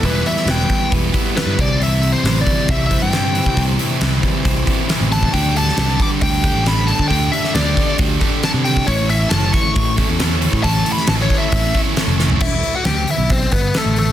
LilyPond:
<<
  \new Staff \with { instrumentName = "Lead electric guitar" } { \time 4/4 \key e \minor \tempo 4 = 136 b'8 e''8 g''4 r4 b'8 d''8 | \tuplet 3/2 { e''4 c''8~ c''8 d''4 e''8 e''8 g''8~ } g''4 | r2. r8 a''8 | g''8 a''4 d'''8 g''4 b''8 a''8 |
g''8 e''8 d''4 r4 a''8 g''8 | cis''8 e''8 a''8 cis'''4 r4. | \tuplet 3/2 { a''4 b''8 a''8 cis''8 e''8~ } e''8 r4. | <e' e''>8. <fis' fis''>16 <g' g''>8 <e' e''>8 <c' c''>8 <b b'>8 <a a'>8 <a a'>8 | }
  \new Staff \with { instrumentName = "Distorted electric guitar" } { \time 4/4 \key e \minor <e g b e'>8 <g b e'>8 <e g b e'>4. <g b e'>8 <e g b e'>8 <c e g c' e'>8 | <c e g c' e'>8 <g c' e'>8 <e g c' e'>4. <g c' e'>8 <c e g c' e'>8 <g c' e'>8 | <c e g c' e'>8 <g c' e'>8 <e g c' e'>4. <g c' e'>8 <c e g c' e'>8 <g c' e'>8 | <d g d' g' a'>8 <d' g' a'>8 <g d' g' a'>4. <d' g' a'>8 <d g d' g' a'>8 <d' g' a'>8 |
<d g d' g' a'>8 <d' g' a'>8 <g d' g' a'>4. <d' g' a'>8 <d g d' g' a'>8 <d' g' a'>8 | <a, e a cis' e' a'>8 <a cis' e' a'>8 <a cis' e' a'>4. <a cis' e' a'>8 <a, e a cis' e' a'>8 <a cis' e' a'>8 | <a, e a cis' e' a'>8 <a cis' e' a'>8 <a cis' e' a'>4. <a cis' e' a'>8 <a, e a cis' e' a'>8 <a cis' e' a'>8 | r1 | }
  \new Staff \with { instrumentName = "Clean electric guitar" } { \clef bass \time 4/4 \key e \minor <e, e g b>4 e8 g8 b8 e8 g8 c8 | c4 e8 g8 c'8 e8 g8 e8 | c4 e8 g8 c'8 e8 g8 e8 | r1 |
r1 | r1 | r1 | r1 | }
  \new Staff \with { instrumentName = "Picked electric bass" } { \clef bass \time 4/4 \key e \minor e,,8 r8 e,,8 r8 e,,8 r8. g,16 c,8~ | c,4 a,,8 r8 c,8. g,4 c16 | c,8 r8 c,8 r8 c,8 r8. a,,8. | d,4 c,8 r8 d,8. a,,4 d16 |
d,8 r8 d,8 r8 d,8 r8. c8. | a,,4 fis,,8 r8 a,,8. e,4 a,16 | a,,8 r8 a,,8 r8 a,,8 r8. f,,8. | e,,8 r8 d,8 r16 b,,8. g,,8 r16 a,,8. | }
  \new DrumStaff \with { instrumentName = "Drums" } \drummode { \time 4/4 <hho bd>8 hho16 sn16 <hho sn>8 <hho bd>8 <hho bd>8 <hho bd>8 <hho sn>8 <hho bd>8 | hho8 hho8 <hho sn>8 <hho bd>8 <hho bd>8 <hho bd>8 <hho sn>8 hho16 bd16 | <hho bd>8 hho8 <hho sn>8 <hho bd>8 <hho bd>8 <hho bd>8 <hho sn>8 hho16 bd16 | <hho bd>8 hho16 sn16 <hho sn>8 <hho bd>8 <hho bd>8 <hho bd>8 <hho sn>8 hho16 bd16 |
<hho bd>8 hho16 sn16 <hho sn>8 <hho bd>8 <hho bd>8 <hho bd>8 <hho sn>8 hho16 bd16 | <hho bd>8 hho8 <hho sn>8 <hho bd>8 <hho bd>8 <hho bd>8 <hho sn>8 hho16 bd16 | <hho bd>8 hho16 sn16 <hho sn>8 <hho bd>8 <hho bd>8 <hho bd>8 <hho sn>8 sn16 tomfh16 | <cymc bd>8 hho8 <hho sn>8 hho8 <hho bd>8 <hho bd>8 <hho sn>8 hho8 | }
>>